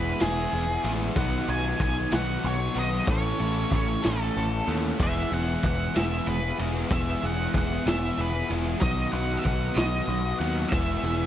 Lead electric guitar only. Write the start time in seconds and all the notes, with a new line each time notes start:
Already playing: B4
0.21 G#4
1.17 F#5
1.50 G#5
1.82 G#5
2.15 F#5
2.47 C#5
2.79 D#5
3.11 C#5
3.75 C#5
4.06 A4
5.03 E5
5.33 F#5
5.66 F#5
5.96 E5
6.27 B4
6.92 E5
7.26 F#5
7.58 F#5
7.89 E5
8.21 B4
8.81 D#5
9.12 F#5
9.38 E5
9.44 F#5
9.75 D#5
10.39 F#5
10.68 E5